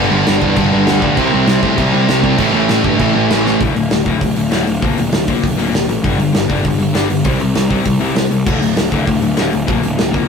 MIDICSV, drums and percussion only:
0, 0, Header, 1, 2, 480
1, 0, Start_track
1, 0, Tempo, 304260
1, 1847, Time_signature, 4, 2, 24, 8
1, 16218, End_track
2, 0, Start_track
2, 0, Title_t, "Drums"
2, 419, Note_on_c, 9, 49, 64
2, 425, Note_on_c, 9, 38, 111
2, 576, Note_off_c, 9, 49, 0
2, 583, Note_off_c, 9, 38, 0
2, 658, Note_on_c, 9, 36, 97
2, 815, Note_off_c, 9, 36, 0
2, 888, Note_on_c, 9, 49, 68
2, 896, Note_on_c, 9, 36, 103
2, 1046, Note_off_c, 9, 49, 0
2, 1054, Note_off_c, 9, 36, 0
2, 1368, Note_on_c, 9, 49, 61
2, 1374, Note_on_c, 9, 38, 107
2, 1525, Note_off_c, 9, 49, 0
2, 1532, Note_off_c, 9, 38, 0
2, 1612, Note_on_c, 9, 36, 95
2, 1770, Note_off_c, 9, 36, 0
2, 1844, Note_on_c, 9, 49, 57
2, 1850, Note_on_c, 9, 36, 100
2, 2002, Note_off_c, 9, 49, 0
2, 2008, Note_off_c, 9, 36, 0
2, 2323, Note_on_c, 9, 49, 61
2, 2330, Note_on_c, 9, 38, 114
2, 2481, Note_off_c, 9, 49, 0
2, 2487, Note_off_c, 9, 38, 0
2, 2569, Note_on_c, 9, 36, 88
2, 2727, Note_off_c, 9, 36, 0
2, 2808, Note_on_c, 9, 36, 99
2, 2811, Note_on_c, 9, 49, 57
2, 2966, Note_off_c, 9, 36, 0
2, 2969, Note_off_c, 9, 49, 0
2, 3291, Note_on_c, 9, 49, 57
2, 3297, Note_on_c, 9, 38, 113
2, 3448, Note_off_c, 9, 49, 0
2, 3455, Note_off_c, 9, 38, 0
2, 3530, Note_on_c, 9, 36, 90
2, 3687, Note_off_c, 9, 36, 0
2, 3759, Note_on_c, 9, 49, 68
2, 3766, Note_on_c, 9, 36, 88
2, 3917, Note_off_c, 9, 49, 0
2, 3923, Note_off_c, 9, 36, 0
2, 4242, Note_on_c, 9, 49, 67
2, 4248, Note_on_c, 9, 38, 111
2, 4400, Note_off_c, 9, 49, 0
2, 4406, Note_off_c, 9, 38, 0
2, 4486, Note_on_c, 9, 36, 93
2, 4644, Note_off_c, 9, 36, 0
2, 4726, Note_on_c, 9, 36, 101
2, 4727, Note_on_c, 9, 49, 65
2, 4884, Note_off_c, 9, 36, 0
2, 4885, Note_off_c, 9, 49, 0
2, 5214, Note_on_c, 9, 49, 66
2, 5220, Note_on_c, 9, 38, 113
2, 5372, Note_off_c, 9, 49, 0
2, 5378, Note_off_c, 9, 38, 0
2, 5459, Note_on_c, 9, 38, 58
2, 5617, Note_off_c, 9, 38, 0
2, 5690, Note_on_c, 9, 36, 115
2, 5699, Note_on_c, 9, 46, 75
2, 5848, Note_off_c, 9, 36, 0
2, 5856, Note_off_c, 9, 46, 0
2, 5935, Note_on_c, 9, 46, 53
2, 6093, Note_off_c, 9, 46, 0
2, 6165, Note_on_c, 9, 46, 72
2, 6172, Note_on_c, 9, 38, 115
2, 6323, Note_off_c, 9, 46, 0
2, 6329, Note_off_c, 9, 38, 0
2, 6402, Note_on_c, 9, 46, 55
2, 6406, Note_on_c, 9, 36, 84
2, 6559, Note_off_c, 9, 46, 0
2, 6564, Note_off_c, 9, 36, 0
2, 6645, Note_on_c, 9, 46, 80
2, 6646, Note_on_c, 9, 36, 96
2, 6803, Note_off_c, 9, 46, 0
2, 6804, Note_off_c, 9, 36, 0
2, 6882, Note_on_c, 9, 46, 57
2, 7040, Note_off_c, 9, 46, 0
2, 7123, Note_on_c, 9, 46, 79
2, 7130, Note_on_c, 9, 38, 104
2, 7281, Note_off_c, 9, 46, 0
2, 7288, Note_off_c, 9, 38, 0
2, 7368, Note_on_c, 9, 46, 59
2, 7526, Note_off_c, 9, 46, 0
2, 7609, Note_on_c, 9, 46, 70
2, 7612, Note_on_c, 9, 36, 112
2, 7767, Note_off_c, 9, 46, 0
2, 7769, Note_off_c, 9, 36, 0
2, 7850, Note_on_c, 9, 46, 59
2, 8007, Note_off_c, 9, 46, 0
2, 8086, Note_on_c, 9, 46, 79
2, 8093, Note_on_c, 9, 38, 111
2, 8244, Note_off_c, 9, 46, 0
2, 8250, Note_off_c, 9, 38, 0
2, 8325, Note_on_c, 9, 46, 70
2, 8332, Note_on_c, 9, 36, 91
2, 8483, Note_off_c, 9, 46, 0
2, 8490, Note_off_c, 9, 36, 0
2, 8575, Note_on_c, 9, 36, 93
2, 8578, Note_on_c, 9, 46, 83
2, 8733, Note_off_c, 9, 36, 0
2, 8736, Note_off_c, 9, 46, 0
2, 8822, Note_on_c, 9, 46, 54
2, 8980, Note_off_c, 9, 46, 0
2, 9066, Note_on_c, 9, 46, 72
2, 9072, Note_on_c, 9, 38, 106
2, 9224, Note_off_c, 9, 46, 0
2, 9230, Note_off_c, 9, 38, 0
2, 9294, Note_on_c, 9, 46, 58
2, 9452, Note_off_c, 9, 46, 0
2, 9533, Note_on_c, 9, 36, 103
2, 9533, Note_on_c, 9, 46, 76
2, 9690, Note_off_c, 9, 36, 0
2, 9691, Note_off_c, 9, 46, 0
2, 9772, Note_on_c, 9, 46, 53
2, 9930, Note_off_c, 9, 46, 0
2, 10010, Note_on_c, 9, 46, 66
2, 10016, Note_on_c, 9, 38, 110
2, 10167, Note_off_c, 9, 46, 0
2, 10174, Note_off_c, 9, 38, 0
2, 10249, Note_on_c, 9, 36, 90
2, 10251, Note_on_c, 9, 46, 62
2, 10407, Note_off_c, 9, 36, 0
2, 10409, Note_off_c, 9, 46, 0
2, 10484, Note_on_c, 9, 46, 76
2, 10490, Note_on_c, 9, 36, 88
2, 10642, Note_off_c, 9, 46, 0
2, 10648, Note_off_c, 9, 36, 0
2, 10720, Note_on_c, 9, 46, 49
2, 10878, Note_off_c, 9, 46, 0
2, 10962, Note_on_c, 9, 46, 83
2, 10968, Note_on_c, 9, 38, 100
2, 11120, Note_off_c, 9, 46, 0
2, 11126, Note_off_c, 9, 38, 0
2, 11200, Note_on_c, 9, 46, 58
2, 11358, Note_off_c, 9, 46, 0
2, 11431, Note_on_c, 9, 46, 84
2, 11439, Note_on_c, 9, 36, 115
2, 11589, Note_off_c, 9, 46, 0
2, 11597, Note_off_c, 9, 36, 0
2, 11677, Note_on_c, 9, 46, 53
2, 11834, Note_off_c, 9, 46, 0
2, 11917, Note_on_c, 9, 46, 86
2, 11923, Note_on_c, 9, 38, 104
2, 12075, Note_off_c, 9, 46, 0
2, 12081, Note_off_c, 9, 38, 0
2, 12155, Note_on_c, 9, 46, 70
2, 12156, Note_on_c, 9, 36, 83
2, 12313, Note_off_c, 9, 46, 0
2, 12314, Note_off_c, 9, 36, 0
2, 12391, Note_on_c, 9, 46, 83
2, 12394, Note_on_c, 9, 36, 89
2, 12549, Note_off_c, 9, 46, 0
2, 12552, Note_off_c, 9, 36, 0
2, 12633, Note_on_c, 9, 46, 52
2, 12791, Note_off_c, 9, 46, 0
2, 12877, Note_on_c, 9, 46, 84
2, 12883, Note_on_c, 9, 38, 102
2, 13034, Note_off_c, 9, 46, 0
2, 13041, Note_off_c, 9, 38, 0
2, 13113, Note_on_c, 9, 46, 54
2, 13271, Note_off_c, 9, 46, 0
2, 13354, Note_on_c, 9, 57, 95
2, 13355, Note_on_c, 9, 36, 115
2, 13512, Note_off_c, 9, 36, 0
2, 13512, Note_off_c, 9, 57, 0
2, 13600, Note_on_c, 9, 46, 60
2, 13758, Note_off_c, 9, 46, 0
2, 13834, Note_on_c, 9, 46, 76
2, 13840, Note_on_c, 9, 38, 112
2, 13991, Note_off_c, 9, 46, 0
2, 13998, Note_off_c, 9, 38, 0
2, 14067, Note_on_c, 9, 46, 63
2, 14072, Note_on_c, 9, 36, 85
2, 14225, Note_off_c, 9, 46, 0
2, 14230, Note_off_c, 9, 36, 0
2, 14315, Note_on_c, 9, 36, 98
2, 14317, Note_on_c, 9, 46, 72
2, 14473, Note_off_c, 9, 36, 0
2, 14475, Note_off_c, 9, 46, 0
2, 14548, Note_on_c, 9, 46, 48
2, 14705, Note_off_c, 9, 46, 0
2, 14783, Note_on_c, 9, 46, 73
2, 14789, Note_on_c, 9, 38, 101
2, 14940, Note_off_c, 9, 46, 0
2, 14947, Note_off_c, 9, 38, 0
2, 15033, Note_on_c, 9, 46, 56
2, 15191, Note_off_c, 9, 46, 0
2, 15270, Note_on_c, 9, 46, 74
2, 15276, Note_on_c, 9, 36, 111
2, 15428, Note_off_c, 9, 46, 0
2, 15434, Note_off_c, 9, 36, 0
2, 15511, Note_on_c, 9, 46, 56
2, 15669, Note_off_c, 9, 46, 0
2, 15754, Note_on_c, 9, 46, 72
2, 15760, Note_on_c, 9, 38, 108
2, 15911, Note_off_c, 9, 46, 0
2, 15918, Note_off_c, 9, 38, 0
2, 15999, Note_on_c, 9, 46, 59
2, 16001, Note_on_c, 9, 36, 88
2, 16157, Note_off_c, 9, 46, 0
2, 16158, Note_off_c, 9, 36, 0
2, 16218, End_track
0, 0, End_of_file